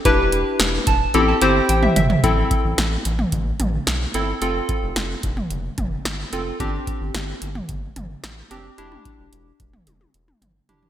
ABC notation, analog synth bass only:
X:1
M:4/4
L:1/16
Q:1/4=110
K:Am
V:1 name="Analog synth bass" clef=bass
E,,,4 E,,,2 E,,,2 A,,,2 G,,,2 A,,,2 G,,,2 | A,,,2 z A,,, A,,,2 A,,,2 A,,,2 A,,,2 B,,,2 G,,,2 | F,,,2 z F,,, F,,,2 F,,,2 F,,,2 F,,,2 G,,,2 F,,,2 | G,,,2 z G,,, G,,,2 G,,,2 G,,,2 G,,,2 A,,,2 F,,,2 |
E,,,2 z E,,, E,,,2 E,,,2 E,,,2 E,,,2 G,,,2 F,,,2 |]